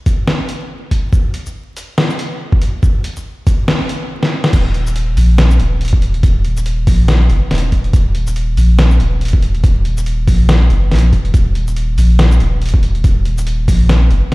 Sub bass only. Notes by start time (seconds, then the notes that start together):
4.53 D#1
5.17 A#1
5.59 D#1
6.23 D#1
6.87 A#1
7.30 F#1
7.51 D#1
7.93 D#1
8.57 A#1
9.00 D#1
9.64 D#1
10.28 A#1
10.70 F#1
10.91 A#1
11.13 D#1
11.34 D#1
11.98 A#1
12.40 D#1
13.04 D#1
13.68 A#1
14.11 F#1